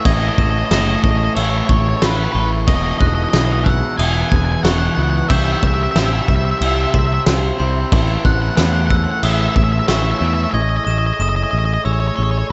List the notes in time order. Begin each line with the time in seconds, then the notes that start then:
Already playing: A3 E4 G#4 C#5
0.05 A1 A2 E3 A3 D#5 G#6, kick, crash
0.14 D#5
0.20 D#5
0.28 D#5
0.34 A1 D#5 E7, kick
0.43 D#5
0.50 D#5
0.59 D#5
0.66 D#5
0.71 F#1 D#5 E7, snare, crash
0.81 D#5
0.88 D#5
0.95 D#5
1.03 A1 D#5, kick
1.11 D#5
1.17 D#5
1.25 D#5
1.35 A1 C#5 E6, crash
1.43 C#5
1.50 C#5
1.58 C#5
1.65 C#5 C#6
1.69 A1 C#5, kick
1.80 C#5
1.89 C#5
1.97 C#5
2.02 A1 B4, snare, crash
2.10 B4
2.17 B4
2.24 B4
2.32 A1 E3 A3 B4 C#6
2.37 A2 B4
2.67 E1 E2 B2 E3 D#4 E4 G#4 D#5, kick, crash
2.75 D#5
2.83 D#5
2.91 D#5
2.98 E1 D#5 F#6, kick
3.07 D#5
3.15 D#5
3.24 D#5
3.30 B1 D#5, snare, crash
3.38 D#5
3.45 D#5
3.53 D#5
3.61 D#5 F#5
3.66 E6, kick
3.98 E1 G#5 D#6, crash
4.05 G#5
4.13 G#5
4.22 G#5
4.29 E1 G#5, kick
4.36 G#5
4.45 G#5
4.52 G#5
4.63 E1 F#5 C#6, snare, crash
4.72 F#5
4.78 F#5
4.87 F#5
4.95 C#2 B2 E3 F#5
4.99 E2 F#5
5.10 F#5
5.17 F#5
5.29 C2 C3 G3 C4 G4 C5 E5 G6, kick, crash
5.36 E5
5.44 E5
5.52 E5
5.59 C2 E5 E6, kick
5.67 E5
5.74 E5
5.83 E5
5.91 E5
5.96 A1 E5 E6, snare, crash
6.06 E5
6.13 E5
6.22 E5
6.28 C2 E5, kick
6.36 E5
6.45 E5
6.51 E5
6.59 C2 E5 E6, crash
6.68 E5
6.75 E5
6.84 E5
6.91 C2 E5 C6, kick
6.99 E5
7.07 E5
7.14 E5
7.26 C2, snare, crash
7.58 C2 C3 G3 C4 C6
7.91 A1 A2 E3 A3 E4 G#4 C#5, kick, crash
8.25 A1 F#5 F#6, kick
8.32 F#5
8.42 F#5
8.50 F#5
8.57 E2 F#5, snare, crash
8.65 F#5
8.73 F#5
8.82 F#5
8.87 F#5 E6, kick
8.96 F#5
9.04 F#5
9.11 F#5
9.23 A1 E5 D#6, crash
9.33 E5
9.41 E5
9.48 E5
9.56 A1 E5, kick
9.64 E5
9.72 E5
9.79 E5
9.88 A1 E5 C#6, snare, crash
9.96 E5
10.03 E5
10.11 E5
10.19 E2 E3 A3 E5
10.23 A2
10.27 E5
10.34 E5
10.44 E5
10.51 A1 D#5 E5 G#6
10.62 D#5
10.69 D#5
10.77 D#5
10.85 A1 D#5 E7
10.91 D#5
10.98 D#5
11.06 D#5
11.14 D#5
11.20 F#1 D#5 E7
11.29 D#5
11.36 D#5
11.43 D#5
11.51 A1 D#5
11.59 D#5
11.65 D#5
11.74 D#5
11.85 A1 C#5 E6
11.93 C#5
12.00 C#5
12.08 C#5
12.16 A1 C#5 C#6
12.23 C#5
12.31 C#5
12.39 C#5